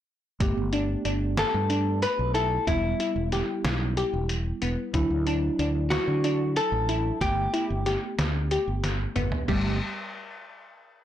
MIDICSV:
0, 0, Header, 1, 6, 480
1, 0, Start_track
1, 0, Key_signature, 1, "major"
1, 0, Tempo, 648649
1, 298, Time_signature, 7, 3, 24, 8
1, 8170, End_track
2, 0, Start_track
2, 0, Title_t, "Hollow-body jazz guitar"
2, 0, Program_c, 0, 26
2, 1028, Note_on_c, 0, 69, 82
2, 1497, Note_off_c, 0, 69, 0
2, 1499, Note_on_c, 0, 71, 82
2, 1731, Note_off_c, 0, 71, 0
2, 1734, Note_on_c, 0, 69, 78
2, 1959, Note_off_c, 0, 69, 0
2, 1977, Note_on_c, 0, 64, 66
2, 2428, Note_off_c, 0, 64, 0
2, 4369, Note_on_c, 0, 66, 81
2, 4857, Note_off_c, 0, 66, 0
2, 4860, Note_on_c, 0, 69, 87
2, 5335, Note_off_c, 0, 69, 0
2, 5338, Note_on_c, 0, 67, 76
2, 6510, Note_off_c, 0, 67, 0
2, 8170, End_track
3, 0, Start_track
3, 0, Title_t, "Synth arpeggio sound"
3, 0, Program_c, 1, 84
3, 540, Note_on_c, 1, 62, 73
3, 748, Note_off_c, 1, 62, 0
3, 778, Note_on_c, 1, 62, 67
3, 1196, Note_off_c, 1, 62, 0
3, 1256, Note_on_c, 1, 62, 75
3, 1675, Note_off_c, 1, 62, 0
3, 1737, Note_on_c, 1, 64, 72
3, 2155, Note_off_c, 1, 64, 0
3, 2220, Note_on_c, 1, 64, 69
3, 2428, Note_off_c, 1, 64, 0
3, 2460, Note_on_c, 1, 67, 66
3, 2877, Note_off_c, 1, 67, 0
3, 2940, Note_on_c, 1, 67, 76
3, 3357, Note_off_c, 1, 67, 0
3, 3418, Note_on_c, 1, 59, 71
3, 3627, Note_off_c, 1, 59, 0
3, 3899, Note_on_c, 1, 62, 77
3, 4108, Note_off_c, 1, 62, 0
3, 4139, Note_on_c, 1, 62, 68
3, 4557, Note_off_c, 1, 62, 0
3, 4620, Note_on_c, 1, 62, 72
3, 5038, Note_off_c, 1, 62, 0
3, 5098, Note_on_c, 1, 64, 78
3, 5516, Note_off_c, 1, 64, 0
3, 5576, Note_on_c, 1, 64, 75
3, 5786, Note_off_c, 1, 64, 0
3, 5818, Note_on_c, 1, 67, 71
3, 6237, Note_off_c, 1, 67, 0
3, 6300, Note_on_c, 1, 67, 76
3, 6718, Note_off_c, 1, 67, 0
3, 6776, Note_on_c, 1, 59, 74
3, 6987, Note_off_c, 1, 59, 0
3, 7016, Note_on_c, 1, 55, 75
3, 7241, Note_off_c, 1, 55, 0
3, 8170, End_track
4, 0, Start_track
4, 0, Title_t, "Tine electric piano"
4, 0, Program_c, 2, 4
4, 297, Note_on_c, 2, 57, 65
4, 302, Note_on_c, 2, 59, 59
4, 309, Note_on_c, 2, 67, 67
4, 1948, Note_off_c, 2, 57, 0
4, 1951, Note_off_c, 2, 59, 0
4, 1954, Note_off_c, 2, 67, 0
4, 1977, Note_on_c, 2, 55, 52
4, 1983, Note_on_c, 2, 59, 51
4, 1987, Note_on_c, 2, 64, 61
4, 3628, Note_off_c, 2, 55, 0
4, 3631, Note_off_c, 2, 59, 0
4, 3633, Note_off_c, 2, 64, 0
4, 3652, Note_on_c, 2, 54, 62
4, 3659, Note_on_c, 2, 62, 62
4, 3663, Note_on_c, 2, 64, 76
4, 5306, Note_off_c, 2, 54, 0
4, 5309, Note_off_c, 2, 62, 0
4, 5311, Note_off_c, 2, 64, 0
4, 5331, Note_on_c, 2, 57, 56
4, 5338, Note_on_c, 2, 59, 51
4, 5346, Note_on_c, 2, 67, 61
4, 6987, Note_off_c, 2, 57, 0
4, 6990, Note_off_c, 2, 59, 0
4, 6994, Note_off_c, 2, 67, 0
4, 7019, Note_on_c, 2, 67, 75
4, 7020, Note_on_c, 2, 57, 68
4, 7021, Note_on_c, 2, 59, 62
4, 7243, Note_off_c, 2, 57, 0
4, 7243, Note_off_c, 2, 67, 0
4, 7244, Note_off_c, 2, 59, 0
4, 8170, End_track
5, 0, Start_track
5, 0, Title_t, "Fretless electric bass"
5, 0, Program_c, 3, 35
5, 301, Note_on_c, 3, 31, 85
5, 393, Note_off_c, 3, 31, 0
5, 422, Note_on_c, 3, 31, 71
5, 701, Note_off_c, 3, 31, 0
5, 777, Note_on_c, 3, 31, 70
5, 1058, Note_off_c, 3, 31, 0
5, 1142, Note_on_c, 3, 43, 72
5, 1514, Note_off_c, 3, 43, 0
5, 1622, Note_on_c, 3, 35, 74
5, 1901, Note_off_c, 3, 35, 0
5, 1978, Note_on_c, 3, 28, 85
5, 2165, Note_off_c, 3, 28, 0
5, 2336, Note_on_c, 3, 28, 70
5, 2524, Note_off_c, 3, 28, 0
5, 2696, Note_on_c, 3, 35, 80
5, 2977, Note_off_c, 3, 35, 0
5, 3059, Note_on_c, 3, 28, 72
5, 3339, Note_off_c, 3, 28, 0
5, 3423, Note_on_c, 3, 28, 81
5, 3515, Note_off_c, 3, 28, 0
5, 3656, Note_on_c, 3, 38, 88
5, 3750, Note_off_c, 3, 38, 0
5, 3777, Note_on_c, 3, 38, 73
5, 4058, Note_off_c, 3, 38, 0
5, 4135, Note_on_c, 3, 38, 72
5, 4417, Note_off_c, 3, 38, 0
5, 4496, Note_on_c, 3, 50, 77
5, 4871, Note_off_c, 3, 50, 0
5, 4973, Note_on_c, 3, 33, 78
5, 5255, Note_off_c, 3, 33, 0
5, 5335, Note_on_c, 3, 31, 85
5, 5524, Note_off_c, 3, 31, 0
5, 5701, Note_on_c, 3, 31, 76
5, 5887, Note_off_c, 3, 31, 0
5, 6058, Note_on_c, 3, 38, 73
5, 6339, Note_off_c, 3, 38, 0
5, 6420, Note_on_c, 3, 31, 70
5, 6700, Note_off_c, 3, 31, 0
5, 6783, Note_on_c, 3, 31, 78
5, 6875, Note_off_c, 3, 31, 0
5, 7017, Note_on_c, 3, 31, 81
5, 7242, Note_off_c, 3, 31, 0
5, 8170, End_track
6, 0, Start_track
6, 0, Title_t, "Drums"
6, 299, Note_on_c, 9, 42, 74
6, 300, Note_on_c, 9, 36, 99
6, 373, Note_off_c, 9, 42, 0
6, 374, Note_off_c, 9, 36, 0
6, 537, Note_on_c, 9, 42, 50
6, 611, Note_off_c, 9, 42, 0
6, 778, Note_on_c, 9, 42, 50
6, 852, Note_off_c, 9, 42, 0
6, 1017, Note_on_c, 9, 38, 87
6, 1017, Note_on_c, 9, 42, 73
6, 1091, Note_off_c, 9, 38, 0
6, 1091, Note_off_c, 9, 42, 0
6, 1257, Note_on_c, 9, 42, 59
6, 1331, Note_off_c, 9, 42, 0
6, 1498, Note_on_c, 9, 42, 69
6, 1572, Note_off_c, 9, 42, 0
6, 1738, Note_on_c, 9, 42, 54
6, 1812, Note_off_c, 9, 42, 0
6, 1979, Note_on_c, 9, 36, 92
6, 1979, Note_on_c, 9, 42, 75
6, 2053, Note_off_c, 9, 36, 0
6, 2053, Note_off_c, 9, 42, 0
6, 2219, Note_on_c, 9, 42, 53
6, 2293, Note_off_c, 9, 42, 0
6, 2459, Note_on_c, 9, 38, 28
6, 2459, Note_on_c, 9, 42, 50
6, 2533, Note_off_c, 9, 38, 0
6, 2533, Note_off_c, 9, 42, 0
6, 2698, Note_on_c, 9, 38, 94
6, 2698, Note_on_c, 9, 42, 68
6, 2772, Note_off_c, 9, 38, 0
6, 2772, Note_off_c, 9, 42, 0
6, 2938, Note_on_c, 9, 42, 55
6, 3012, Note_off_c, 9, 42, 0
6, 3177, Note_on_c, 9, 42, 64
6, 3251, Note_off_c, 9, 42, 0
6, 3417, Note_on_c, 9, 42, 51
6, 3491, Note_off_c, 9, 42, 0
6, 3655, Note_on_c, 9, 42, 71
6, 3657, Note_on_c, 9, 36, 94
6, 3729, Note_off_c, 9, 42, 0
6, 3731, Note_off_c, 9, 36, 0
6, 3897, Note_on_c, 9, 42, 51
6, 3971, Note_off_c, 9, 42, 0
6, 4139, Note_on_c, 9, 42, 48
6, 4213, Note_off_c, 9, 42, 0
6, 4376, Note_on_c, 9, 38, 91
6, 4376, Note_on_c, 9, 42, 69
6, 4450, Note_off_c, 9, 38, 0
6, 4450, Note_off_c, 9, 42, 0
6, 4618, Note_on_c, 9, 42, 61
6, 4692, Note_off_c, 9, 42, 0
6, 4857, Note_on_c, 9, 42, 72
6, 4931, Note_off_c, 9, 42, 0
6, 5097, Note_on_c, 9, 42, 53
6, 5171, Note_off_c, 9, 42, 0
6, 5337, Note_on_c, 9, 36, 99
6, 5337, Note_on_c, 9, 42, 79
6, 5411, Note_off_c, 9, 36, 0
6, 5411, Note_off_c, 9, 42, 0
6, 5577, Note_on_c, 9, 42, 54
6, 5651, Note_off_c, 9, 42, 0
6, 5817, Note_on_c, 9, 38, 29
6, 5817, Note_on_c, 9, 42, 54
6, 5891, Note_off_c, 9, 38, 0
6, 5891, Note_off_c, 9, 42, 0
6, 6058, Note_on_c, 9, 38, 87
6, 6058, Note_on_c, 9, 42, 73
6, 6132, Note_off_c, 9, 38, 0
6, 6132, Note_off_c, 9, 42, 0
6, 6298, Note_on_c, 9, 42, 59
6, 6372, Note_off_c, 9, 42, 0
6, 6539, Note_on_c, 9, 38, 52
6, 6539, Note_on_c, 9, 42, 68
6, 6613, Note_off_c, 9, 38, 0
6, 6613, Note_off_c, 9, 42, 0
6, 6778, Note_on_c, 9, 42, 51
6, 6778, Note_on_c, 9, 45, 76
6, 6852, Note_off_c, 9, 42, 0
6, 6852, Note_off_c, 9, 45, 0
6, 6895, Note_on_c, 9, 43, 72
6, 6969, Note_off_c, 9, 43, 0
6, 7018, Note_on_c, 9, 36, 95
6, 7018, Note_on_c, 9, 49, 81
6, 7092, Note_off_c, 9, 36, 0
6, 7092, Note_off_c, 9, 49, 0
6, 8170, End_track
0, 0, End_of_file